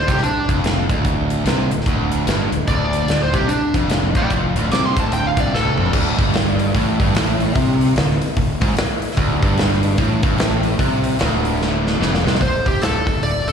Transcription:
Already playing: lead electric guitar C5
0.07 fingered electric bass C2, distorted electric guitar C3, lead electric guitar G4, kick, closed hi-hat
0.18 snare
0.22 lead electric guitar D4, muted fingered electric bass stroke, muted distorted electric guitar stroke, closed hi-hat
0.48 fingered electric bass F1, distorted electric guitar F2, kick, closed hi-hat
0.64 snare, closed hi-hat
0.89 fingered electric bass D1, distorted electric guitar D2, kick, closed hi-hat
1.05 kick, closed hi-hat
1.30 closed hi-hat
1.45 fingered electric bass C2, distorted electric guitar C3, snare, closed hi-hat
1.70 fingered electric bass D1, distorted electric guitar D2, closed hi-hat
1.81 snare
1.86 fingered electric bass D1, distorted electric guitar D2, kick, closed hi-hat
2.12 closed hi-hat
2.26 fingered electric bass G1, distorted electric guitar G2, snare, closed hi-hat
2.52 fingered electric bass D1, distorted electric guitar D2, closed hi-hat
2.67 fingered electric bass D1, distorted electric guitar D2, lead electric guitar D5, kick, closed hi-hat
2.93 closed hi-hat
3.07 fingered electric bass D1, distorted electric guitar D2, snare, closed hi-hat
3.23 lead electric guitar C5
3.34 fingered electric bass C2, distorted electric guitar C3, lead electric guitar G4, kick, closed hi-hat
3.48 lead electric guitar D4, muted fingered electric bass stroke, muted distorted electric guitar stroke, closed hi-hat
3.74 fingered electric bass F1, distorted electric guitar F2, kick, closed hi-hat
3.90 snare, closed hi-hat
4.15 fingered electric bass D1, distorted electric guitar D2, lead electric guitar D5 G5, kick, closed hi-hat
4.30 fingered electric bass F1, distorted electric guitar F2, kick, closed hi-hat
4.55 fingered electric bass D1, distorted electric guitar D2, closed hi-hat
4.71 fingered electric bass C2, distorted electric guitar C3, lead electric guitar D6, snare, closed hi-hat
4.86 lead electric guitar C6
4.96 fingered electric bass D1, distorted electric guitar D2, lead electric guitar A5, kick, closed hi-hat
5.12 lead electric guitar G5, closed hi-hat
5.27 lead electric guitar F5
5.37 fingered electric bass C2, distorted electric guitar C3, lead electric guitar D5, kick, closed hi-hat
5.52 fingered electric bass D1, distorted electric guitar D2, lead electric guitar A4, snare
5.65 high tom
5.77 fingered electric bass F1, distorted electric guitar F2, mid tom
5.86 floor tom
5.93 fingered electric bass D1, distorted electric guitar D2, kick, crash
6.18 fingered electric bass G1, distorted electric guitar G2, kick, open hi-hat
6.34 snare, open hi-hat
6.59 open hi-hat
6.75 fingered electric bass A1, distorted electric guitar A2, kick, open hi-hat
6.99 fingered electric bass G1, distorted electric guitar G2, kick, open hi-hat
7.14 fingered electric bass A1, distorted electric guitar A2, snare, open hi-hat
7.40 open hi-hat
7.55 fingered electric bass C2, distorted electric guitar C3, kick, open hi-hat
7.81 open hi-hat
7.96 fingered electric bass D1, distorted electric guitar D2, snare, open hi-hat
8.11 snare
8.22 open hi-hat
8.37 fingered electric bass D1, distorted electric guitar D2, kick, open hi-hat
8.61 fingered electric bass G#1, distorted electric guitar G#2, kick, open hi-hat
8.77 muted distorted electric guitar stroke, muted fingered electric bass stroke, snare, open hi-hat
9.02 open hi-hat
9.11 snare
9.17 fingered electric bass D1, distorted electric guitar D2, kick, open hi-hat
9.42 fingered electric bass G1, distorted electric guitar G2, kick, open hi-hat
9.58 snare, open hi-hat
9.73 snare
9.83 open hi-hat
9.98 fingered electric bass A1, distorted electric guitar A2, kick, open hi-hat
10.23 fingered electric bass G1, distorted electric guitar G2, kick, open hi-hat
10.38 fingered electric bass A1, distorted electric guitar A2, snare, open hi-hat
10.63 open hi-hat
10.79 fingered electric bass C2, distorted electric guitar C3, kick, open hi-hat
11.04 open hi-hat
11.19 fingered electric bass D1, distorted electric guitar D2, snare, open hi-hat
11.45 open hi-hat
11.62 snare
11.87 snare
12.00 fingered electric bass F1, distorted electric guitar F2, snare
12.15 snare
12.25 fingered electric bass C2, distorted electric guitar C3, snare
12.35 snare
12.41 fingered electric bass D1, lead electric guitar C5, kick, open hi-hat
12.66 fingered electric bass D1, lead electric guitar G4, kick, open hi-hat
12.81 fingered electric bass D1, lead electric guitar A4, snare, open hi-hat
13.07 fingered electric bass D1, kick, open hi-hat
13.22 fingered electric bass D1, lead electric guitar D5, open hi-hat
13.47 fingered electric bass D1, lead electric guitar A4, open hi-hat

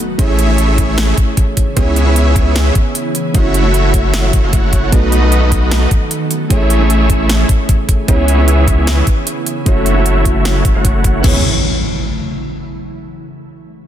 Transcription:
Already playing: impact
0.00 ambient pad C#3 E3 A3 E4 G#4
0.18 sub bass A1, felt piano A3 C#4 E4 G#4 C#5, supersaw synth A3 E4 G#4 C#5 E5, kick, closed hi-hat
0.39 closed hi-hat
0.47 felt piano A3 C#4 E4 G#4
0.51 felt piano C#5
0.58 closed hi-hat
0.78 kick, closed hi-hat
0.98 snare, closed hi-hat
1.18 kick, closed hi-hat
1.37 kick, closed hi-hat
1.57 kick, closed hi-hat
1.76 sub bass C#2, ambient pad E3 B3, felt piano B3 C#4 E4 G#4 C#5, supersaw synth B3 E4 G#4 C#5 E5, kick, closed hi-hat
1.96 closed hi-hat
2.05 felt piano B3 C#4 E4 G#4 C#5
2.16 closed hi-hat
2.36 kick, closed hi-hat
2.56 snare, closed hi-hat
2.75 kick, closed hi-hat
2.95 closed hi-hat
3.15 closed hi-hat
3.34 sub bass F#1, ambient pad F#3 A3 C#4 F#4, felt piano A3 C#4 E4 F#4 C#5, supersaw synth A3 E4 F#4 C#5 E5, kick, closed hi-hat
3.54 closed hi-hat
3.63 felt piano A3 C#4 E4 F#4
3.67 felt piano C#5
3.74 closed hi-hat
3.94 kick, closed hi-hat
4.14 snare, closed hi-hat
4.33 sub bass F#1, supersaw synth A3 E4 F#4 C#5 E5, kick, closed hi-hat
4.44 sub bass F#1, supersaw synth A3 E4 F#4 C#5 F#5
4.53 kick, closed hi-hat
4.73 kick, closed hi-hat
4.92 sub bass B1, ambient pad D#3 B3, felt piano A3 B3 D#4 F#4 B4, supersaw synth A3 D#4 F#4 B4 D#5, kick, closed hi-hat
5.12 closed hi-hat
5.21 felt piano A3 B3 D#4 F#4
5.25 felt piano B4
5.32 closed hi-hat
5.52 kick, closed hi-hat
5.71 snare, closed hi-hat
5.91 kick, closed hi-hat
6.11 closed hi-hat
6.31 ambient pad C#3 E3 E4 G#4, closed hi-hat
6.49 sub bass A1, felt piano A3 C#4 E4 G#4 C#5, supersaw synth A3 E4 G#4 C#5 E5, kick, closed hi-hat
6.70 closed hi-hat
6.79 felt piano A3 C#4 E4 G#4
6.83 felt piano C#5
6.90 closed hi-hat
7.10 kick, closed hi-hat
7.29 snare, closed hi-hat
7.49 kick, closed hi-hat
7.69 kick, closed hi-hat
7.89 kick, closed hi-hat
8.07 sub bass C#2, felt piano B3 C#4 E4 G#4 C#5, supersaw synth B3 E4 G#4 C#5 E5, ambient pad B3, kick, closed hi-hat
8.28 closed hi-hat
8.37 felt piano B3 C#4 E4 G#4
8.41 felt piano C#5
8.48 closed hi-hat
8.68 kick, closed hi-hat
8.87 snare, closed hi-hat
9.07 kick, closed hi-hat
9.27 closed hi-hat
9.47 closed hi-hat
9.65 sub bass F#1, ambient pad F#3 A3, felt piano A3 C#4 E4 F#4 C#5, supersaw synth A3 E4 F#4 C#5 E5, kick, closed hi-hat
9.86 closed hi-hat
9.94 felt piano A3 C#4 E4 F#4
10.06 closed hi-hat
10.25 kick, closed hi-hat
10.45 snare, closed hi-hat
10.65 sub bass F#1, supersaw synth A3 E4 F#4 C#5 E5, kick, closed hi-hat
10.75 sub bass F#1, supersaw synth A3 E4 F#4 C#5 F#5
10.85 kick, closed hi-hat
11.04 kick, closed hi-hat
11.21 sub bass C#2, felt piano B3 C#4 E4, supersaw synth B3 E4 G#4 C#5 E5, kick, crash, impact
11.26 felt piano G#4 C#5

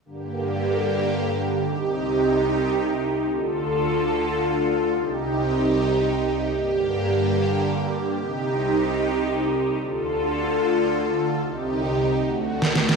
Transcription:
0.05 supersaw synth G2 D3 A#3 G4
1.67 supersaw synth C2 C3 D#4 G4
3.30 supersaw synth D2 D3 F4 A4
4.92 supersaw synth C2 C3 D#4 G4
6.54 supersaw synth G2 D3 A#3 G4
8.16 supersaw synth C2 C3 D#4 G4
9.78 supersaw synth D2 D3 F4 A4
11.40 supersaw synth C2 C3 D#4 G4
12.21 supersaw synth D2 D3 A3 F#4
12.62 snare
12.76 snare
12.89 snare

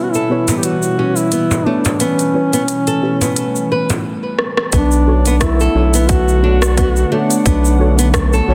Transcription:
Already playing: ambient pad B2 E3 G3 B3 E4
0.03 duduk F#4
0.12 duduk E4, nylon-string guitar A4, shaker
0.29 synth stab B3 E4 G4 B4 C#5
0.48 nylon-string guitar B3, closed hi-hat, frame drum, shaker
0.57 duduk G4
0.63 duduk F#4, closed hi-hat, shaker
0.82 shaker
0.97 synth stab B3 E4 G4 B4 C#5, nylon-string guitar C#4
1.16 duduk E4, shaker
1.32 nylon-string guitar B3, closed hi-hat, shaker
1.51 frame drum, shaker
1.65 nylon-string guitar A3, synth stab B3 E4 G4 B4 C#5, duduk D4
1.85 closed hi-hat, frame drum, shaker
2.00 ambient pad A3, nylon-string guitar B3, duduk C#4, closed hi-hat, shaker
2.19 closed hi-hat, shaker
2.33 synth stab B3 E4 G4 B4 C#5
2.53 nylon-string guitar B3, closed hi-hat, shaker
2.68 closed hi-hat, shaker
2.87 nylon-string guitar A4, closed hi-hat, shaker
3.01 synth stab B3 E4 G4 B4 C#5
3.21 nylon-string guitar B3, closed hi-hat, frame drum, shaker
3.36 closed hi-hat, shaker
3.56 shaker
3.72 nylon-string guitar B4
3.90 closed hi-hat, frame drum, shaker
4.39 cross-stick
4.57 cross-stick
4.72 analog synth bass B1, ambient pad D3 A3 B3 F#5, nylon-string guitar B3, duduk D4, kick, closed hi-hat, shaker
4.91 shaker
5.06 synth stab D4 F#4 A4 C#5
5.26 nylon-string guitar B3, closed hi-hat, shaker
5.41 duduk E4, kick, cross-stick, closed hi-hat, shaker
5.60 nylon-string guitar A4, shaker
5.74 analog synth bass B1, synth stab D4 F#4 A4 C#5
5.94 nylon-string guitar B3, closed hi-hat, shaker
6.09 duduk F#4, kick, closed hi-hat, shaker
6.28 shaker
6.42 synth stab D4 F#4 A4 C#5, nylon-string guitar D4
6.62 cross-stick, shaker
6.77 nylon-string guitar B3, kick, closed hi-hat, shaker
6.96 shaker
7.10 nylon-string guitar A3, synth stab D4 F#4 A4 C#5, duduk D4
7.30 closed hi-hat, shaker
7.46 analog synth bass B1, nylon-string guitar B3, kick, closed hi-hat, shaker
7.65 shaker
7.79 synth stab D4 F#4 A4 C#5
7.99 nylon-string guitar B3, closed hi-hat, shaker
8.14 kick, cross-stick, closed hi-hat, shaker
8.33 nylon-string guitar A4, shaker
8.47 analog synth bass B1, synth stab D4 F#4 A4 C#5

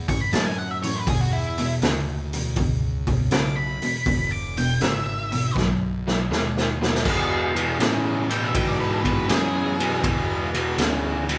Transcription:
0.08 overdriven electric guitar A2 E3, lead electric guitar C#6, muted picked electric bass stroke, kick, open hi-hat
0.21 lead electric guitar B5
0.33 picked electric bass F#2, overdriven electric guitar A2 F#3, lead electric guitar A5, snare, open hi-hat
0.46 lead electric guitar G#5
0.59 lead electric guitar F#5
0.71 lead electric guitar E5
0.83 overdriven electric guitar A2 E3, lead electric guitar C#5, open hi-hat
0.96 lead electric guitar B4
1.07 picked electric bass E2, overdriven electric guitar E2 B2, lead electric guitar G#4, kick, open hi-hat
1.21 lead electric guitar F#4
1.33 lead electric guitar E4
1.58 overdriven electric guitar E2 B2, open hi-hat
1.82 picked electric bass D2, overdriven electric guitar E2 C#3, snare, open hi-hat
2.33 overdriven electric guitar E2 B2, open hi-hat
2.56 picked electric bass C#2, overdriven electric guitar E2 B2, kick, open hi-hat
3.07 overdriven electric guitar E2 B2, kick, open hi-hat
3.31 picked electric bass B1, overdriven electric guitar E2 C#3, lead electric guitar D6, snare, open hi-hat
3.56 lead electric guitar B5
3.82 overdriven electric guitar E2 B2, muted picked electric bass stroke, open hi-hat
4.06 picked electric bass E1, overdriven electric guitar E2 B2, kick, open hi-hat
4.32 lead electric guitar D6
4.57 overdriven electric guitar E2 B2, lead electric guitar G5, open hi-hat
4.81 picked electric bass G#1, overdriven electric guitar E2 C#3, lead electric guitar E5, snare, open hi-hat
5.06 lead electric guitar E5
5.32 overdriven electric guitar E2 B2, open hi-hat
5.55 picked electric bass B1, overdriven electric guitar B2 F#3, kick, snare
6.07 overdriven electric guitar B2 F#3, snare
6.30 picked electric bass D#2, overdriven electric guitar B2 G#3, snare
6.57 snare
6.81 overdriven electric guitar B2 F#3, snare
6.95 snare
7.05 picked electric bass E2, overdriven electric guitar E2 B2, kick, crash
7.56 overdriven electric guitar E2 B2, ride
7.80 overdriven electric guitar E2 C#3, picked electric bass A2, snare, ride
8.30 overdriven electric guitar E2 B2, lead electric guitar G5, ride
8.43 lead electric guitar E5
8.54 overdriven electric guitar E2 B2, picked electric bass G#2, lead electric guitar G5, kick, ride
8.68 lead electric guitar D5
8.80 lead electric guitar B4
8.92 lead electric guitar G4
9.04 overdriven electric guitar E2 B2, lead electric guitar B4, kick, ride
9.28 overdriven electric guitar E2 C#3, picked electric bass F#2, lead electric guitar G#4, snare, ride
9.80 overdriven electric guitar E2 B2, ride
10.04 overdriven electric guitar E2 B2, picked electric bass E2, kick, ride
10.54 overdriven electric guitar E2 B2, ride
10.78 picked electric bass D2, overdriven electric guitar E2 C#3, snare, ride
11.29 overdriven electric guitar E2 B2, ride

